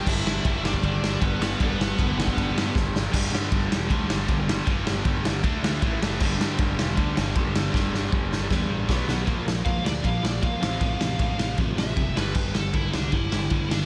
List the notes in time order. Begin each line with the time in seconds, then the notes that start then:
Already playing: G2 D3 G3
0.06 G1 G2 D3 G3 E4 E5, kick, crash
0.25 G1 G2 D3 G3, snare
0.45 G1 G2 D3 G3, kick, ride
0.64 G1 G2 D3 G3 D4 D5, snare
0.74 kick
0.83 G1 G2 D3 G3 D4 D5, kick, ride
1.02 G1 G2 D3 G3, snare
1.20 G1 G2 D3 G3 B3 B4, kick, ride
1.40 G1 G2 D3 G3, snare
1.59 G1 G2 D3 G3 B3 B4, kick, ride
1.78 G1 G2 D3 G3, snare
1.99 G1 G2 D3 G3, kick, ride
2.17 G1 G2 D3 G3, snare
2.27 kick
2.37 G1 G2 D3 G3, kick, ride
2.55 G2 D3 G3, snare
2.74 G1 G2 D3 G3, kick, snare
2.93 G1 G2 D3 G3, snare
3.12 G1 G2 D3 G3, kick, crash
3.30 G2 D3 G3
3.35 snare
3.50 G1 G2 D3 G3, kick, ride
3.70 E1 G2 D3 G3, snare
3.89 D2 G2 D3 G3, kick, ride
4.08 G1 G2 D3 G3, snare
4.27 G1 G2 D3 G3, kick, ride
4.47 G2 D3 G3, snare
4.67 G1 G2 D3 G3, kick, ride
4.86 G1 G2 D3 G3, snare
5.05 G1 G2 D3 G3, kick, ride
5.24 G1 G2 D3 G3, snare
5.43 D2 D3 A3 D4, kick, ride
5.62 D2 D3 A3 D4, snare
5.82 A1 A2 E3 A3, kick, ride
6.00 F#1 A2 E3 A3, snare
6.19 G1 G2 D3 G3, kick, crash
6.38 G2 D3 G3, snare
6.57 G1 G2 D3 G3, kick, ride
6.77 E1 G2 D3 G3, snare
6.96 D2 G2 D3 G3, kick, ride
7.15 G1 G2 D3 G3, snare
7.35 G1 G2 D3 G3, kick, ride
7.54 G2 D3 G3, snare
7.74 G1 G2 D3 G3, kick, snare
7.92 G1 G2 D3 G3, snare
8.12 G1 G2 D3 G3, kick
8.31 G1 G2 D3 G3, snare
8.49 E2 G2 D3 G3, kick, snare
8.69 A1 G2 D3 G3
8.89 B1 B2 F#3 B3, kick, snare
9.07 B1 B2 F#3 B3, snare
9.25 A#1 A#2 F3 A#3, kick, ride
9.46 A#1 A#2 F3, snare
9.64 A#1 A#2 F3 A#3 F5, kick, ride
9.84 D2 A#2 F3 A#3 D5, snare
10.03 A#1 A#2 F3 A#3 F5, kick, ride
10.22 A#1 A#2 F3 D5, snare
10.41 A#1 A#2 F3 A#3 F5, kick, ride
10.60 A1 F2 C3 F3, snare
10.80 A1 F2 C3 F3, kick, ride
10.99 A1 F2 C3, snare
11.18 A1 F2 C3 F3, kick, ride
11.38 A1 F2 C3 F3, snare
11.57 A1 F2 C3 F3, kick, ride
11.76 A1 F2 C3 E5, snare
11.96 F#1 F2 C3 F3, kick, ride
12.14 G1 G2 D3 G3 B4, snare
12.35 G1 G2 D3 G3, kick, crash
12.55 G1 G2 D3 A4, snare
12.73 G1 G2 D3 G3 E4, kick, ride
12.93 C2 G2 D3 G3 D4, snare
13.12 G1 G2 D3 G3 E4, kick, ride
13.32 G1 G2 D3, snare
13.50 G1 G2 D3 G3, kick, ride
13.70 G2 D3 G3 D4, snare